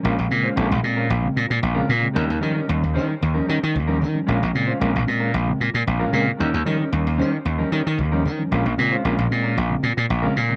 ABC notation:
X:1
M:4/4
L:1/16
Q:1/4=113
K:Bbdor
V:1 name="Clean electric guitar"
[A,DFB] z2 [A,DFc] [A,DFB]2 z [A,DFB] z4 z [A,DFB] z2 | [G,DEB] z [G,DEB] [G,DEB] z2 [G,DEc] z2 [G,DEB] [G,DEB] z2 [G,DEB] z2 | [A,DFB] z2 [A,DFc] [A,DFB] z2 [A,DFB] z4 z [A,DFB] [A,DFB] z | [G,DEB] z [G,DEB] [G,DEB] z2 [G,DEc] z2 [G,DEB] [G,DEB] z2 [G,DEB] z2 |
[A,DFB] z2 [A,DFc] [A,DFB] z2 [A,DFB] z4 z [A,DFB] z2 |]
V:2 name="Tine electric piano" clef=bass
B,, [A,C] [D,A,C] z [A,C] B,, [A,C] z B,, [D,A,C] [A,C] z2 [D,A,C] B,, [D,A,C] | E, [G,D] [F,G,D] z [G,D] E, [G,D] z E, [F,G,D] [G,D] z2 [F,G,D] E, [F,G,D] | B,, [A,C] [D,A,C] z [A,C] B,, [A,C] z B,, [D,A,C] [A,C] z [A,C] B,, [D,A,C] z | E, [G,D] [F,G,D] z [G,D] E, [G,D] z E, [F,G,D] [G,D] z2 [F,G,D] E, [F,G,D] |
B,, [A,C] [D,A,C] z [A,C] B,, [A,C] z B,, [D,A,C] [A,C] z2 [D,A,C] B,, [D,A,C] |]
V:3 name="Slap bass" clef=bass
B,,, B,,, B,,2 B,,, B,,, B,,2 B,,,2 B,, B,, B,,,2 B,,2 | E,, E,, E,2 E,, E,, E,2 E,,2 E, E, E,,2 E,2 | B,,, B,,, B,,2 B,,, B,,, B,,2 B,,,2 B,, B,, B,,,2 B,,2 | E,, E,, E,2 E,, E,, E,2 E,,2 E, E, E,,2 E,2 |
B,,, B,,, B,,2 B,,, B,,, B,,2 B,,,2 B,, B,, B,,,2 B,,2 |]